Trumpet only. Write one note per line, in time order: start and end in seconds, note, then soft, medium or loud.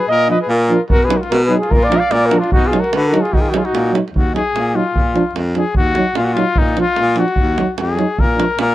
0.11 0.29 A#4 loud
0.31 0.40 B4 medium
0.41 0.52 G#4 medium
0.51 0.82 F4 medium
0.90 1.06 F#4 loud
1.05 1.18 G#4 medium
1.17 1.34 F4 medium
1.17 1.20 F#4 medium
1.32 1.45 F#4 medium
1.45 1.57 G#4 medium
1.61 1.75 F4 medium
1.75 1.89 F4 medium
1.87 2.01 A#4 medium
2.00 2.13 D5 medium
2.12 2.28 A#4 medium
2.26 2.40 F#4 medium
2.39 2.52 D4 medium
2.53 2.68 D#4 medium
2.66 2.82 F4 medium
2.80 2.94 F#4 medium
2.94 3.07 F#4 medium
3.07 3.23 F#4 medium
3.22 3.35 F4 medium
3.34 3.43 D#4 medium
3.42 3.51 F4 medium
3.50 3.59 D#4 medium
3.58 3.67 F4 medium
3.65 3.93 D#4 medium
4.17 4.34 F#4 medium
4.35 4.77 G#4 medium
4.76 5.36 F4 medium
5.58 5.76 G#4 medium
5.77 6.18 F#4 medium
6.17 6.26 F4 medium
6.24 6.35 F#4 medium
6.34 6.60 F4 medium
6.59 6.78 D#4 medium
6.81 7.16 F4 medium
7.19 7.74 F#4 medium
7.80 8.22 G#4 medium
8.20 8.59 A#4 medium
8.62 8.75 A#4 medium